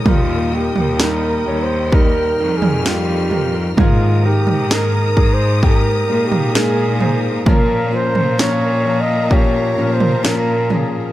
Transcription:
Already playing: string section A#4 D#6
0.05 cello section D#2, grand piano A#2 G3 D#4 A#4, nylon-string guitar D#3 G3 A#3 D#4 G4, flugelhorn F4, string section G5, kick, floor tom
0.52 grand piano G3 D#4 A#4, nylon-string guitar A#3 D#4 G4, flugelhorn G4
0.76 cello section D#2, floor tom
0.99 nylon-string guitar D#3 G3 A#3 D#4 G4, grand piano G3 D#4 A#4, flugelhorn A#4, snare
1.45 cello section D#2, grand piano G3 D#4 C#5
1.63 flugelhorn C5
1.92 nylon-string guitar G3 A#3 D#4 G4, grand piano G3 D#4 A#4, flugelhorn A#4, string section F6, kick
2.39 cello section F2, grand piano G3 D#4 A#4, nylon-string guitar A#3 D#4
2.57 flugelhorn G#4
2.62 floor tom
2.85 nylon-string guitar D#3 G3 A#3 D#4 G4, grand piano G3 D#4 F4, flugelhorn G4, snare
3.31 grand piano G3 D#4 A#4, nylon-string guitar A#3 D#4 G4, floor tom
3.77 cello section G#2, grand piano G#2 D#3 G#3 D#4 A#4, nylon-string guitar G#3 A#3 D#4 G#4, flugelhorn F4, string section A#4 A#5 D#6, kick, floor tom
4.24 grand piano G#3 D#4 A#4, nylon-string guitar A#3 D#4, flugelhorn G4
4.47 cello section G#2, floor tom
4.70 grand piano G#3 D#4 A#4, nylon-string guitar G#3 A#3 D#4 G#4, flugelhorn A#4, snare
5.16 cello section G#2, grand piano G#3 D#4 G#4, kick
5.34 flugelhorn C5
5.62 grand piano G#3 D#4 G4, nylon-string guitar G#3 A#3 D#4 G#4, flugelhorn A#4, kick
6.08 cello section A#2, grand piano G#3 D#4 A#4, nylon-string guitar A#3 D#4
6.27 flugelhorn G4
6.32 floor tom
6.54 grand piano G#3 D#4 A#4, nylon-string guitar G#3 A#3 D#4 G#4, flugelhorn G#4, snare
7.00 grand piano G#3 D#4 C5, nylon-string guitar A#3 D#4 G#4, floor tom
7.46 cello section A#2, nylon-string guitar A#2 F3 A#3 C#4 F4, grand piano A#2 F3 C#4 A#4, flugelhorn A#4, string section F5 A#5, kick, floor tom
7.92 grand piano F3 C#4 A#4, nylon-string guitar A#3 C#4 F4, flugelhorn C5
8.15 cello section A#2, floor tom
8.38 nylon-string guitar A#2 F3 A#3 C#4 F4, grand piano F3 C#4 A#4, flugelhorn C#5, snare
8.84 grand piano F3 C#4 A#4
9.01 flugelhorn D#5
9.30 nylon-string guitar F3 A#3 C#4 F4, grand piano F3 C#4 G4, flugelhorn C#5, kick
9.76 cello section A#2, grand piano F3 C#4 A#4, nylon-string guitar A#3 C#4 F4
9.94 flugelhorn C5
10.00 floor tom
10.23 nylon-string guitar A#2 F3 A#3 C#4 F4, grand piano F3 C#4 C#5, flugelhorn A#4, snare
10.69 grand piano F3 C#4 G#4, nylon-string guitar A#3 C#4 F4, floor tom

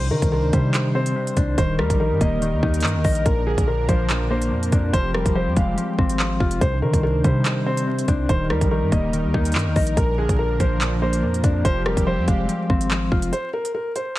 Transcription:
Already playing: 808-style bass C2, clean electric guitar C3, analog synth pad D#3 D4 C5
0.11 808-style bass D#3, clean electric guitar D#3, grand piano A#4
0.22 808-style bass C2, kick, closed hi-hat
0.32 clean electric guitar C3, grand piano A#4
0.43 808-style bass D2
0.53 808-style bass C3, clean electric guitar G3, grand piano C5, kick, closed hi-hat
0.74 clean electric guitar C3, clap, closed hi-hat
0.95 clean electric guitar C4, grand piano C5
1.06 closed hi-hat
1.16 clean electric guitar C3
1.27 closed hi-hat
1.37 808-style bass C2, clean electric guitar D4, kick, closed hi-hat
1.58 808-style bass D#1, clean electric guitar D#3, analog synth pad G3 D#4 A#4, grand piano C5, kick, closed hi-hat
1.79 808-style bass D#2, clean electric guitar G3, grand piano A#4, cross-stick
1.90 808-style bass A#1, kick, closed hi-hat
2.00 clean electric guitar D#3, grand piano A#4
2.11 808-style bass G2
2.21 808-style bass D#1, clean electric guitar A#3, grand piano D#5, kick, closed hi-hat
2.42 clean electric guitar D#3, closed hi-hat
2.53 808-style bass D#2
2.63 808-style bass D#2, clean electric guitar D#4, kick
2.74 closed hi-hat
2.80 808-style bass G2, clean electric guitar D#3, clap, closed hi-hat
2.87 closed hi-hat
2.95 808-style bass D#2
3.04 808-style bass A#1, clean electric guitar D#5, kick, open hi-hat
3.15 closed hi-hat
3.26 808-style bass A#1, clean electric guitar A#2, analog synth pad F3 D4, grand piano A#4, kick, closed hi-hat
3.46 clean electric guitar D3, grand piano G#4
3.58 808-style bass A#1, kick, closed hi-hat
3.68 clean electric guitar A#2, grand piano A#4
3.89 808-style bass A#1, clean electric guitar F3, grand piano C5, kick, closed hi-hat
4.10 clean electric guitar A#2, clap, closed hi-hat
4.30 clean electric guitar A#3, grand piano C5
4.42 closed hi-hat
4.52 808-style bass F2, clean electric guitar A#2
4.63 closed hi-hat
4.72 808-style bass F2, clean electric guitar D4, kick, closed hi-hat
4.93 808-style bass F1, clean electric guitar F3, analog synth pad C4 G4, grand piano C5, kick, closed hi-hat
5.14 clean electric guitar G3, grand piano A#4, cross-stick
5.26 808-style bass F1, kick, closed hi-hat
5.35 clean electric guitar F3, grand piano C5
5.47 808-style bass F2
5.56 808-style bass F1, clean electric guitar G#3, grand piano F5, kick, closed hi-hat
5.77 clean electric guitar F3, closed hi-hat
5.99 808-style bass G#1, clean electric guitar C4, kick
6.09 closed hi-hat
6.19 clean electric guitar F3, clap
6.40 808-style bass F1, clean electric guitar F4, kick
6.51 closed hi-hat
6.61 808-style bass C2, clean electric guitar C3, analog synth pad D#3 D4 C5, grand piano C5, kick, closed hi-hat
6.82 clean electric guitar D#3, 808-style bass D#3, grand piano A#4
6.94 808-style bass C2, kick, closed hi-hat
7.03 clean electric guitar C3, grand piano A#4
7.14 808-style bass D2
7.24 808-style bass C3, clean electric guitar G3, grand piano C5, kick, closed hi-hat
7.45 clean electric guitar C3, clap, closed hi-hat
7.66 clean electric guitar C4, grand piano C5
7.77 closed hi-hat
7.87 clean electric guitar C3
7.99 closed hi-hat
8.08 808-style bass C2, clean electric guitar D4, kick, closed hi-hat
8.29 808-style bass D#1, clean electric guitar D#3, analog synth pad G3 D#4 A#4, grand piano C5, kick, closed hi-hat
8.50 808-style bass D#2, clean electric guitar G3, grand piano A#4, cross-stick
8.61 808-style bass A#1, kick, closed hi-hat
8.71 clean electric guitar D#3, grand piano A#4
8.82 808-style bass G2
8.92 808-style bass D#1, clean electric guitar A#3, grand piano D#5, kick, closed hi-hat
9.13 clean electric guitar D#3, closed hi-hat
9.24 808-style bass D#2
9.34 808-style bass D#2, clean electric guitar D#4, kick
9.45 closed hi-hat
9.52 808-style bass G2, clean electric guitar D#3, clap, closed hi-hat
9.59 closed hi-hat
9.66 808-style bass D#2
9.76 808-style bass A#1, clean electric guitar D#5, kick, open hi-hat
9.87 closed hi-hat
9.97 808-style bass A#1, clean electric guitar A#2, analog synth pad F3 D4, grand piano A#4, kick, closed hi-hat
10.18 clean electric guitar D3, grand piano G#4
10.29 808-style bass A#1, kick, closed hi-hat
10.39 clean electric guitar A#2, grand piano A#4
10.60 808-style bass A#1, clean electric guitar F3, grand piano C5, kick, closed hi-hat
10.81 clean electric guitar A#2, clap, closed hi-hat
11.02 clean electric guitar A#3, grand piano C5
11.13 closed hi-hat
11.23 808-style bass F2, clean electric guitar A#2
11.34 closed hi-hat
11.44 808-style bass F2, clean electric guitar D4, kick, closed hi-hat
11.65 808-style bass F1, clean electric guitar F3, analog synth pad C4 G4, grand piano C5, kick, closed hi-hat
11.86 clean electric guitar G3, grand piano A#4, cross-stick
11.97 808-style bass F1, kick, closed hi-hat
12.07 clean electric guitar F3, grand piano C5
12.18 808-style bass F2
12.28 808-style bass F1, clean electric guitar G#3, grand piano F5, kick, closed hi-hat
12.49 clean electric guitar F3, closed hi-hat
12.70 808-style bass G#1, clean electric guitar C4, kick
12.81 closed hi-hat
12.91 clean electric guitar F3, clap
13.12 808-style bass F1, clean electric guitar F4, kick
13.22 closed hi-hat
13.33 grand piano C5, closed hi-hat
13.54 grand piano A#4
13.65 closed hi-hat
13.75 grand piano A#4
13.96 grand piano C5, closed hi-hat

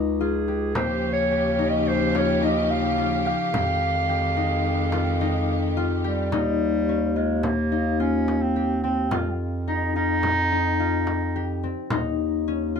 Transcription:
Already playing: bass clarinet C#2, harp D#4 F4
0.20 harp F4, clarinet G#4
0.48 harp G4, frame drum
0.75 bass clarinet D#2, string section C#3 F3 C#4 G4, harp G4, clarinet C5, frame drum
1.13 clarinet C#5
1.30 harp G4, frame drum
1.59 harp D#4, frame drum
1.69 clarinet D#5
1.86 clarinet C5, frame drum
2.14 harp F4, clarinet C#5, frame drum
2.42 harp D#4, clarinet D#5, frame drum
2.70 clarinet F5
2.98 harp F4
3.26 harp G4, clarinet F5, frame drum
3.52 bass clarinet F2, string section D#3 G#3, harp G4, frame drum
3.81 frame drum
4.09 harp G4
4.37 harp D#4, frame drum
4.92 harp F4, frame drum
5.21 harp D#4
5.77 harp F4
6.04 clarinet G3, harp G4
6.32 bass clarinet D#2, harp D#4, frame drum
6.89 harp C#4
7.16 clarinet G#3, harp F4
7.43 clarinet A#3, frame drum
7.72 harp D#4
8.00 clarinet C#4, harp F4
8.28 frame drum
8.41 clarinet C4
8.56 harp G4
8.83 clarinet C4, harp C4, frame drum
9.11 bass clarinet F2, harp F4, frame drum
9.68 harp D#4, clarinet D#4
9.95 clarinet D#4, harp F4
10.23 frame drum
10.52 harp D#4
10.80 harp F4
11.07 frame drum
11.36 harp G4
11.63 harp C4, frame drum
11.90 bass clarinet D#2, harp D#4, frame drum
12.48 harp C#4
12.76 harp F4

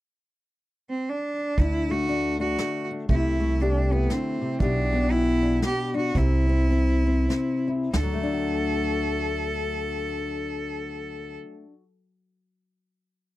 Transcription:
0.90 cello C4
1.09 cello D4
1.58 upright bass D2, steel-string acoustic guitar D3 D4, cello E4, kick, closed hi-hat
1.90 steel-string acoustic guitar A3, cello F#4
2.08 steel-string acoustic guitar D4, closed hi-hat
2.40 steel-string acoustic guitar D4, cello F#4
2.58 steel-string acoustic guitar A3, snare, closed hi-hat
2.91 steel-string acoustic guitar D4
3.08 upright bass C2, steel-string acoustic guitar C3 A3, cello E4, kick, closed hi-hat
3.40 steel-string acoustic guitar A3
3.60 cello D4, steel-string acoustic guitar G4, closed hi-hat
3.92 cello B3, steel-string acoustic guitar E4
4.10 steel-string acoustic guitar D3, cello C4, snare, closed hi-hat
4.41 steel-string acoustic guitar C3
4.60 upright bass B1, steel-string acoustic guitar B2 G4, cello D4, kick, closed hi-hat
4.93 steel-string acoustic guitar B3
5.11 steel-string acoustic guitar D4, cello E4, closed hi-hat
5.43 steel-string acoustic guitar D4
5.62 steel-string acoustic guitar B3, cello G4, snare, closed hi-hat
5.94 steel-string acoustic guitar D4, cello F#4
6.15 upright bass C2, steel-string acoustic guitar C3 C4, cello E4, kick, closed hi-hat
6.49 steel-string acoustic guitar C4
6.71 steel-string acoustic guitar C4, closed hi-hat
7.07 steel-string acoustic guitar C4
7.29 steel-string acoustic guitar C4, snare, closed hi-hat
7.68 steel-string acoustic guitar E4
7.93 upright bass D2, steel-string acoustic guitar D3, cello A4, snare, open hi-hat
8.03 steel-string acoustic guitar F#3
8.14 steel-string acoustic guitar A3
8.23 steel-string acoustic guitar D4
8.33 steel-string acoustic guitar F#4

